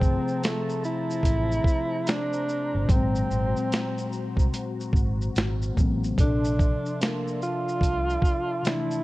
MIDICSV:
0, 0, Header, 1, 6, 480
1, 0, Start_track
1, 0, Tempo, 821918
1, 1687, Time_signature, 4, 2, 24, 8
1, 5277, End_track
2, 0, Start_track
2, 0, Title_t, "Analog synth pad"
2, 0, Program_c, 0, 89
2, 0, Note_on_c, 0, 53, 71
2, 0, Note_on_c, 0, 72, 61
2, 0, Note_on_c, 0, 81, 67
2, 0, Note_on_c, 0, 82, 86
2, 1667, Note_off_c, 0, 53, 0
2, 1667, Note_off_c, 0, 81, 0
2, 1685, Note_on_c, 0, 66, 63
2, 3583, Note_off_c, 0, 72, 0
2, 3584, Note_off_c, 0, 82, 0
2, 3587, Note_off_c, 0, 66, 0
2, 3605, Note_on_c, 0, 81, 69
2, 3606, Note_on_c, 0, 74, 65
2, 3606, Note_on_c, 0, 76, 65
2, 3606, Note_on_c, 0, 84, 70
2, 5277, Note_off_c, 0, 74, 0
2, 5277, Note_off_c, 0, 76, 0
2, 5277, Note_off_c, 0, 81, 0
2, 5277, Note_off_c, 0, 84, 0
2, 5277, End_track
3, 0, Start_track
3, 0, Title_t, "Tenor saxophone"
3, 0, Program_c, 1, 66
3, 0, Note_on_c, 1, 60, 104
3, 258, Note_on_c, 1, 57, 94
3, 267, Note_off_c, 1, 60, 0
3, 493, Note_off_c, 1, 57, 0
3, 498, Note_on_c, 1, 64, 113
3, 1217, Note_on_c, 1, 62, 107
3, 1226, Note_off_c, 1, 64, 0
3, 1699, Note_on_c, 1, 60, 97
3, 1708, Note_off_c, 1, 62, 0
3, 2653, Note_off_c, 1, 60, 0
3, 3621, Note_on_c, 1, 62, 94
3, 4097, Note_on_c, 1, 58, 90
3, 4106, Note_off_c, 1, 62, 0
3, 4332, Note_off_c, 1, 58, 0
3, 4337, Note_on_c, 1, 65, 118
3, 5059, Note_on_c, 1, 64, 108
3, 5068, Note_off_c, 1, 65, 0
3, 5277, Note_off_c, 1, 64, 0
3, 5277, End_track
4, 0, Start_track
4, 0, Title_t, "Tine electric piano"
4, 0, Program_c, 2, 4
4, 0, Control_c, 2, 64, 127
4, 0, Note_on_c, 2, 48, 63
4, 0, Note_on_c, 2, 53, 61
4, 0, Note_on_c, 2, 57, 67
4, 0, Note_on_c, 2, 60, 82
4, 0, Note_on_c, 2, 68, 68
4, 1651, Note_off_c, 2, 48, 0
4, 1661, Note_off_c, 2, 53, 0
4, 1663, Note_on_c, 2, 46, 70
4, 1671, Note_off_c, 2, 57, 0
4, 1682, Note_off_c, 2, 60, 0
4, 1684, Note_on_c, 2, 54, 67
4, 1694, Control_c, 2, 64, 0
4, 1697, Note_off_c, 2, 68, 0
4, 1707, Note_on_c, 2, 56, 63
4, 1728, Note_on_c, 2, 60, 78
4, 1802, Control_c, 2, 64, 127
4, 3332, Note_off_c, 2, 46, 0
4, 3342, Note_off_c, 2, 54, 0
4, 3353, Note_off_c, 2, 56, 0
4, 3356, Note_on_c, 2, 58, 61
4, 3364, Note_off_c, 2, 60, 0
4, 3366, Note_on_c, 2, 54, 53
4, 3377, Note_on_c, 2, 56, 45
4, 3387, Note_on_c, 2, 60, 61
4, 3578, Note_on_c, 2, 48, 72
4, 3599, Note_on_c, 2, 53, 56
4, 3602, Note_off_c, 2, 58, 0
4, 3606, Note_off_c, 2, 54, 0
4, 3612, Note_off_c, 2, 56, 0
4, 3614, Control_c, 2, 64, 0
4, 3617, Note_off_c, 2, 60, 0
4, 3619, Note_on_c, 2, 69, 62
4, 3642, Note_on_c, 2, 62, 75
4, 3718, Control_c, 2, 64, 127
4, 5009, Note_off_c, 2, 48, 0
4, 5020, Note_off_c, 2, 53, 0
4, 5030, Note_off_c, 2, 69, 0
4, 5040, Note_on_c, 2, 48, 43
4, 5041, Note_off_c, 2, 62, 0
4, 5051, Note_on_c, 2, 52, 45
4, 5061, Note_on_c, 2, 57, 46
4, 5072, Note_on_c, 2, 62, 53
4, 5277, Note_off_c, 2, 48, 0
4, 5277, Note_off_c, 2, 52, 0
4, 5277, Note_off_c, 2, 57, 0
4, 5277, Note_off_c, 2, 62, 0
4, 5277, End_track
5, 0, Start_track
5, 0, Title_t, "Fingered electric bass"
5, 0, Program_c, 3, 33
5, 0, Note_on_c, 3, 31, 101
5, 97, Note_off_c, 3, 31, 0
5, 720, Note_on_c, 3, 33, 96
5, 923, Note_off_c, 3, 33, 0
5, 1604, Note_on_c, 3, 31, 79
5, 1674, Note_off_c, 3, 31, 0
5, 1689, Note_on_c, 3, 32, 91
5, 1888, Note_off_c, 3, 32, 0
5, 1931, Note_on_c, 3, 32, 86
5, 2058, Note_off_c, 3, 32, 0
5, 2553, Note_on_c, 3, 36, 93
5, 2628, Note_off_c, 3, 36, 0
5, 2881, Note_on_c, 3, 32, 88
5, 3083, Note_off_c, 3, 32, 0
5, 3132, Note_on_c, 3, 32, 85
5, 3330, Note_off_c, 3, 32, 0
5, 3372, Note_on_c, 3, 33, 102
5, 3570, Note_off_c, 3, 33, 0
5, 3611, Note_on_c, 3, 34, 96
5, 3937, Note_off_c, 3, 34, 0
5, 4562, Note_on_c, 3, 36, 80
5, 4764, Note_off_c, 3, 36, 0
5, 5277, End_track
6, 0, Start_track
6, 0, Title_t, "Drums"
6, 9, Note_on_c, 9, 36, 94
6, 16, Note_on_c, 9, 82, 45
6, 68, Note_off_c, 9, 36, 0
6, 74, Note_off_c, 9, 82, 0
6, 165, Note_on_c, 9, 82, 40
6, 223, Note_off_c, 9, 82, 0
6, 255, Note_on_c, 9, 42, 64
6, 255, Note_on_c, 9, 82, 66
6, 263, Note_on_c, 9, 26, 95
6, 263, Note_on_c, 9, 38, 114
6, 313, Note_off_c, 9, 42, 0
6, 313, Note_off_c, 9, 82, 0
6, 321, Note_off_c, 9, 26, 0
6, 321, Note_off_c, 9, 38, 0
6, 406, Note_on_c, 9, 82, 44
6, 465, Note_off_c, 9, 82, 0
6, 491, Note_on_c, 9, 82, 49
6, 549, Note_off_c, 9, 82, 0
6, 646, Note_on_c, 9, 82, 57
6, 705, Note_off_c, 9, 82, 0
6, 718, Note_on_c, 9, 36, 75
6, 731, Note_on_c, 9, 42, 65
6, 731, Note_on_c, 9, 82, 69
6, 777, Note_off_c, 9, 36, 0
6, 789, Note_off_c, 9, 42, 0
6, 789, Note_off_c, 9, 82, 0
6, 886, Note_on_c, 9, 82, 51
6, 945, Note_off_c, 9, 82, 0
6, 959, Note_on_c, 9, 36, 81
6, 977, Note_on_c, 9, 82, 47
6, 1017, Note_off_c, 9, 36, 0
6, 1036, Note_off_c, 9, 82, 0
6, 1209, Note_on_c, 9, 42, 63
6, 1209, Note_on_c, 9, 82, 65
6, 1220, Note_on_c, 9, 26, 87
6, 1220, Note_on_c, 9, 38, 110
6, 1267, Note_off_c, 9, 42, 0
6, 1267, Note_off_c, 9, 82, 0
6, 1279, Note_off_c, 9, 26, 0
6, 1279, Note_off_c, 9, 38, 0
6, 1362, Note_on_c, 9, 82, 57
6, 1420, Note_off_c, 9, 82, 0
6, 1454, Note_on_c, 9, 82, 50
6, 1512, Note_off_c, 9, 82, 0
6, 1687, Note_on_c, 9, 36, 116
6, 1690, Note_on_c, 9, 42, 57
6, 1690, Note_on_c, 9, 82, 57
6, 1745, Note_off_c, 9, 36, 0
6, 1748, Note_off_c, 9, 42, 0
6, 1748, Note_off_c, 9, 82, 0
6, 1842, Note_on_c, 9, 82, 55
6, 1901, Note_off_c, 9, 82, 0
6, 1934, Note_on_c, 9, 82, 47
6, 1993, Note_off_c, 9, 82, 0
6, 2083, Note_on_c, 9, 82, 43
6, 2141, Note_off_c, 9, 82, 0
6, 2174, Note_on_c, 9, 42, 62
6, 2174, Note_on_c, 9, 82, 59
6, 2182, Note_on_c, 9, 26, 93
6, 2182, Note_on_c, 9, 38, 116
6, 2232, Note_off_c, 9, 42, 0
6, 2232, Note_off_c, 9, 82, 0
6, 2241, Note_off_c, 9, 26, 0
6, 2241, Note_off_c, 9, 38, 0
6, 2325, Note_on_c, 9, 82, 51
6, 2383, Note_off_c, 9, 82, 0
6, 2410, Note_on_c, 9, 82, 52
6, 2468, Note_off_c, 9, 82, 0
6, 2551, Note_on_c, 9, 36, 86
6, 2565, Note_on_c, 9, 82, 56
6, 2610, Note_off_c, 9, 36, 0
6, 2624, Note_off_c, 9, 82, 0
6, 2650, Note_on_c, 9, 42, 67
6, 2650, Note_on_c, 9, 82, 64
6, 2709, Note_off_c, 9, 42, 0
6, 2709, Note_off_c, 9, 82, 0
6, 2807, Note_on_c, 9, 82, 47
6, 2865, Note_off_c, 9, 82, 0
6, 2879, Note_on_c, 9, 36, 83
6, 2897, Note_on_c, 9, 82, 47
6, 2937, Note_off_c, 9, 36, 0
6, 2955, Note_off_c, 9, 82, 0
6, 3046, Note_on_c, 9, 82, 45
6, 3104, Note_off_c, 9, 82, 0
6, 3130, Note_on_c, 9, 42, 56
6, 3130, Note_on_c, 9, 82, 62
6, 3142, Note_on_c, 9, 26, 84
6, 3142, Note_on_c, 9, 38, 111
6, 3189, Note_off_c, 9, 42, 0
6, 3189, Note_off_c, 9, 82, 0
6, 3200, Note_off_c, 9, 26, 0
6, 3201, Note_off_c, 9, 38, 0
6, 3283, Note_on_c, 9, 82, 57
6, 3342, Note_off_c, 9, 82, 0
6, 3371, Note_on_c, 9, 36, 89
6, 3376, Note_on_c, 9, 82, 52
6, 3429, Note_off_c, 9, 36, 0
6, 3434, Note_off_c, 9, 82, 0
6, 3527, Note_on_c, 9, 82, 55
6, 3585, Note_off_c, 9, 82, 0
6, 3608, Note_on_c, 9, 36, 101
6, 3612, Note_on_c, 9, 42, 58
6, 3612, Note_on_c, 9, 82, 57
6, 3667, Note_off_c, 9, 36, 0
6, 3670, Note_off_c, 9, 42, 0
6, 3670, Note_off_c, 9, 82, 0
6, 3764, Note_on_c, 9, 82, 59
6, 3823, Note_off_c, 9, 82, 0
6, 3850, Note_on_c, 9, 36, 85
6, 3856, Note_on_c, 9, 82, 44
6, 3908, Note_off_c, 9, 36, 0
6, 3914, Note_off_c, 9, 82, 0
6, 4005, Note_on_c, 9, 82, 42
6, 4064, Note_off_c, 9, 82, 0
6, 4097, Note_on_c, 9, 42, 66
6, 4097, Note_on_c, 9, 82, 66
6, 4105, Note_on_c, 9, 26, 94
6, 4105, Note_on_c, 9, 38, 123
6, 4155, Note_off_c, 9, 42, 0
6, 4155, Note_off_c, 9, 82, 0
6, 4163, Note_off_c, 9, 26, 0
6, 4163, Note_off_c, 9, 38, 0
6, 4249, Note_on_c, 9, 82, 45
6, 4308, Note_off_c, 9, 82, 0
6, 4334, Note_on_c, 9, 82, 54
6, 4392, Note_off_c, 9, 82, 0
6, 4489, Note_on_c, 9, 82, 54
6, 4547, Note_off_c, 9, 82, 0
6, 4560, Note_on_c, 9, 36, 78
6, 4573, Note_on_c, 9, 42, 62
6, 4573, Note_on_c, 9, 82, 62
6, 4618, Note_off_c, 9, 36, 0
6, 4632, Note_off_c, 9, 42, 0
6, 4632, Note_off_c, 9, 82, 0
6, 4729, Note_on_c, 9, 82, 48
6, 4788, Note_off_c, 9, 82, 0
6, 4801, Note_on_c, 9, 36, 83
6, 4818, Note_on_c, 9, 82, 47
6, 4859, Note_off_c, 9, 36, 0
6, 4876, Note_off_c, 9, 82, 0
6, 5052, Note_on_c, 9, 42, 57
6, 5052, Note_on_c, 9, 82, 65
6, 5063, Note_on_c, 9, 26, 88
6, 5063, Note_on_c, 9, 38, 113
6, 5110, Note_off_c, 9, 42, 0
6, 5110, Note_off_c, 9, 82, 0
6, 5122, Note_off_c, 9, 26, 0
6, 5122, Note_off_c, 9, 38, 0
6, 5204, Note_on_c, 9, 82, 59
6, 5263, Note_off_c, 9, 82, 0
6, 5277, End_track
0, 0, End_of_file